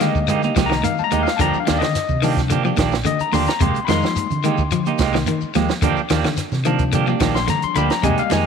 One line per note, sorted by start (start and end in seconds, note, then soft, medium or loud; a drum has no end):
0.00 0.49 D3 medium
0.00 0.17 D#3 medium
0.00 1.35 G3 medium
0.00 0.18 G#3 medium
0.00 1.36 G#3 soft
0.00 0.18 A#3 medium
0.00 1.36 A#3 medium
0.00 0.18 D#4 medium
0.00 0.19 G4 medium
0.00 1.36 D#5 medium
0.00 snare soft
0.00 closed hi-hat soft
0.00 shekere medium
0.15 kick medium
0.15 shekere soft
0.28 0.43 G#3 medium
0.28 0.43 A#3 medium
0.28 0.43 D#4 medium
0.28 0.43 G4 medium
0.28 muted clean electric guitar stroke medium
0.28 closed hi-hat medium
0.28 shekere medium
0.43 0.56 A#3 soft
0.43 0.56 D#4 soft
0.43 0.56 G4 medium
0.43 closed hi-hat soft
0.43 high conga medium
0.43 shekere soft
0.56 0.81 C2 medium
0.56 0.65 F3 medium
0.56 0.74 G#3 medium
0.56 0.74 A#3 medium
0.56 0.74 D#4 medium
0.56 0.74 G4 medium
0.56 kick medium
0.56 snare medium
0.56 closed hi-hat medium
0.56 high conga medium
0.56 shekere medium
0.66 0.78 D#3 medium
0.66 0.84 A#5 medium
0.71 snare medium
0.71 high conga medium
0.71 shekere soft
0.83 1.00 D#3 medium
0.83 1.02 F5 medium
0.83 closed hi-hat medium
0.83 high conga medium
0.83 low conga medium
0.83 shekere medium
0.98 1.03 A5 medium
0.98 muted fingered electric bass stroke soft
0.98 shekere soft
1.04 1.21 A#5 medium
1.11 1.25 D#2 medium
1.11 1.29 G#3 medium
1.11 1.29 A#3 medium
1.11 1.30 D#4 medium
1.11 1.30 G4 medium
1.11 muted clean electric guitar stroke medium
1.11 closed hi-hat medium
1.11 high conga medium
1.11 shekere medium
1.23 1.40 F5 medium
1.23 shekere soft
1.28 snare medium
1.37 1.52 D#2 loud
1.37 1.56 D3 medium
1.37 1.57 F3 medium
1.37 1.77 F3 soft
1.37 1.57 A#3 medium
1.37 1.40 A5 medium
1.37 kick medium
1.37 closed hi-hat medium
1.37 low conga medium
1.37 shekere medium
1.41 1.78 G3 soft
1.41 1.57 D4 medium
1.41 1.78 D4 medium
1.41 1.57 G4 medium
1.41 1.58 A#5 loud
1.54 shekere soft
1.60 1.77 F5 medium
1.67 1.81 D#2 medium
1.67 1.76 D#3 medium
1.67 1.85 F3 medium
1.67 1.85 A#3 medium
1.67 1.85 D4 medium
1.67 1.85 G4 medium
1.67 snare medium
1.67 closed hi-hat medium
1.67 high conga medium
1.67 shekere medium
1.74 1.77 D5 medium
1.79 1.98 D3 medium
1.79 1.94 D#3 medium
1.79 2.31 D#5 medium
1.79 closed hi-hat soft
1.79 shekere soft
1.83 snare medium
1.95 snare soft
1.95 closed hi-hat medium
1.95 shekere medium
2.09 2.70 C3 medium
2.09 kick medium
2.09 low conga medium
2.09 shekere soft
2.22 2.39 D#3 medium
2.22 2.48 F3 soft
2.22 2.40 F3 medium
2.22 2.48 G3 soft
2.22 2.40 A#3 medium
2.22 2.48 D4 medium
2.22 2.41 D4 medium
2.22 2.41 G4 medium
2.22 open hi-hat medium
2.22 shekere medium
2.37 kick medium
2.37 snare soft
2.37 closed hi-hat soft
2.37 shekere soft
2.50 2.59 D3 medium
2.50 2.65 F3 medium
2.50 2.65 A#3 medium
2.50 2.65 D4 medium
2.50 2.64 G4 medium
2.50 closed hi-hat medium
2.50 shekere medium
2.64 2.73 F3 medium
2.64 2.78 A#3 soft
2.64 2.78 D4 soft
2.64 2.79 G4 medium
2.64 high conga medium
2.64 shekere soft
2.77 3.03 A#1 medium
2.77 2.94 D#3 medium
2.77 2.96 F3 medium
2.77 2.96 A#3 medium
2.77 2.96 D4 medium
2.77 2.96 G4 medium
2.77 kick medium
2.77 snare medium
2.77 closed hi-hat medium
2.77 high conga medium
2.77 shekere medium
2.91 snare medium
2.91 high conga medium
2.91 shekere soft
3.04 3.22 D3 medium
3.04 3.20 D#5 medium
3.04 closed hi-hat medium
3.04 high conga medium
3.04 low conga medium
3.04 shekere medium
3.19 3.33 A#5 medium
3.19 muted fingered electric bass stroke soft
3.19 closed hi-hat soft
3.19 shekere soft
3.32 3.46 D#2 medium
3.32 3.50 D3 medium
3.32 3.51 F3 medium
3.32 3.51 A#3 medium
3.32 3.51 D4 medium
3.32 3.51 G4 medium
3.32 3.47 C6 medium
3.32 open hi-hat medium
3.32 high conga medium
3.32 shekere medium
3.46 3.60 A#5 medium
3.46 snare medium
3.46 closed hi-hat soft
3.46 shekere soft
3.60 3.74 F2 medium
3.60 3.77 C3 medium
3.60 3.79 G#3 medium
3.60 3.79 A#3 medium
3.60 3.79 G4 medium
3.60 3.88 C6 medium
3.60 muted clean electric guitar stroke medium
3.60 kick loud
3.60 closed hi-hat medium
3.60 low conga medium
3.60 shekere medium
3.75 closed hi-hat soft
3.75 shekere soft
3.85 4.02 F2 medium
3.85 4.05 D#3 medium
3.85 4.26 G3 medium
3.85 4.06 G#3 medium
3.85 4.26 G#3 soft
3.85 4.06 A#3 medium
3.85 3.89 B5 medium
3.85 high conga medium
3.85 shekere medium
3.89 4.26 A#3 soft
3.89 4.06 D#4 medium
3.89 4.27 D#4 medium
3.89 5.51 C6 medium
3.89 snare medium
3.89 closed hi-hat medium
4.02 4.15 F3 medium
4.02 snare medium
4.02 shekere soft
4.16 closed hi-hat medium
4.16 shekere medium
4.30 4.92 D3 medium
4.30 closed hi-hat soft
4.30 low conga medium
4.30 shekere soft
4.43 4.61 D#3 medium
4.43 4.62 G#3 medium
4.43 4.62 A#3 medium
4.43 4.62 D#4 medium
4.43 4.62 G4 medium
4.43 closed hi-hat soft
4.43 shekere medium
4.58 kick medium
4.58 shekere soft
4.71 4.89 F3 medium
4.71 closed hi-hat medium
4.71 shekere medium
4.86 5.00 A#3 soft
4.86 5.00 D#4 medium
4.86 5.00 G4 soft
4.86 closed hi-hat soft
4.86 high conga medium
4.86 shekere soft
4.99 5.24 C2 medium
4.99 5.17 G#3 medium
4.99 5.17 A#3 medium
4.99 5.18 D#4 medium
4.99 5.18 G4 medium
4.99 kick medium
4.99 snare medium
4.99 closed hi-hat medium
4.99 high conga loud
4.99 shekere medium
5.13 5.22 D#3 medium
5.13 snare medium
5.13 high conga medium
5.13 shekere soft
5.26 5.44 D#3 medium
5.26 closed hi-hat medium
5.26 high conga medium
5.26 low conga medium
5.26 shekere medium
5.41 muted fingered electric bass stroke soft
5.41 shekere soft
5.54 5.68 D#2 medium
5.54 5.72 F3 medium
5.54 5.72 G#3 medium
5.54 5.73 A#3 medium
5.54 5.73 G4 medium
5.54 muted clean electric guitar stroke medium
5.54 snare soft
5.54 closed hi-hat medium
5.54 high conga medium
5.54 shekere medium
5.69 snare medium
5.69 shekere soft
5.82 5.95 D#2 medium
5.82 5.99 D3 medium
5.82 6.00 F3 medium
5.82 6.00 A#3 medium
5.82 6.00 D4 medium
5.82 6.01 G4 medium
5.82 kick loud
5.82 closed hi-hat medium
5.82 low conga medium
5.82 shekere medium
5.97 muted fingered electric bass stroke soft
5.97 shekere soft
6.09 6.23 D#2 medium
6.09 6.19 D#3 medium
6.09 6.28 F3 medium
6.09 6.28 A#3 medium
6.09 6.28 D4 medium
6.09 6.28 G4 medium
6.09 snare medium
6.09 closed hi-hat medium
6.09 high conga medium
6.09 shekere medium
6.24 6.41 D3 medium
6.24 6.36 D#3 medium
6.24 snare medium
6.24 closed hi-hat soft
6.24 shekere soft
6.37 snare soft
6.37 closed hi-hat medium
6.37 shekere medium
6.52 7.13 C3 medium
6.52 snare soft
6.52 low conga medium
6.52 shekere soft
6.65 6.82 D#3 medium
6.65 8.00 F3 medium
6.65 6.83 F3 medium
6.65 8.00 G3 medium
6.65 6.83 A#3 medium
6.65 8.00 D4 medium
6.65 6.83 D4 medium
6.65 muted clean electric guitar stroke medium
6.65 closed hi-hat soft
6.65 shekere medium
6.79 kick medium
6.79 closed hi-hat soft
6.79 shekere soft
6.92 7.02 D3 medium
6.92 7.08 F3 medium
6.92 7.08 A#3 medium
6.92 7.08 D4 medium
6.92 7.07 G4 medium
6.92 closed hi-hat medium
6.92 shekere medium
7.07 7.16 F3 medium
7.07 7.21 A#3 soft
7.07 7.22 D4 soft
7.07 7.21 G4 medium
7.07 high conga medium
7.07 shekere soft
7.20 7.45 A#1 medium
7.20 7.37 D#3 medium
7.20 7.38 F3 medium
7.20 7.39 A#3 medium
7.20 7.39 D4 medium
7.20 7.39 G4 medium
7.20 kick medium
7.20 snare medium
7.20 closed hi-hat medium
7.20 high conga medium
7.20 shekere medium
7.34 7.47 C6 medium
7.34 snare medium
7.34 high conga medium
7.34 shekere soft
7.48 7.64 D3 medium
7.48 7.63 A#5 medium
7.48 snare soft
7.48 closed hi-hat medium
7.48 high conga medium
7.48 low conga medium
7.48 shekere medium
7.62 7.76 C6 medium
7.62 muted fingered electric bass stroke soft
7.62 closed hi-hat soft
7.62 shekere soft
7.75 7.89 D2 medium
7.75 7.93 D3 medium
7.75 7.93 F3 medium
7.75 7.94 A#3 medium
7.75 7.94 D4 medium
7.75 7.94 G4 medium
7.75 7.89 B5 medium
7.75 closed hi-hat medium
7.75 high conga medium
7.75 shekere medium
7.90 8.03 A#5 medium
7.90 snare medium
7.90 closed hi-hat soft
7.90 shekere soft
8.03 8.16 F2 medium
8.03 8.20 C3 medium
8.03 8.46 G3 medium
8.03 8.46 G#3 soft
8.03 8.21 G#3 medium
8.03 8.46 A#3 medium
8.03 8.21 A#3 medium
8.03 8.21 D#4 medium
8.03 8.21 G4 medium
8.03 8.46 D#5 medium
8.03 8.17 G#5 medium
8.03 kick loud
8.03 closed hi-hat medium
8.03 low conga medium
8.03 shekere medium
8.18 8.31 F5 medium
8.18 muted fingered electric bass stroke soft
8.18 closed hi-hat soft
8.18 shekere soft
8.30 8.44 F2 medium
8.30 8.46 D#3 medium
8.30 8.46 G#3 medium
8.30 8.46 A#3 medium
8.30 8.46 D#4 medium
8.30 8.46 G4 medium
8.30 8.45 G#5 medium
8.30 snare medium
8.30 closed hi-hat medium
8.30 high conga medium
8.30 shekere medium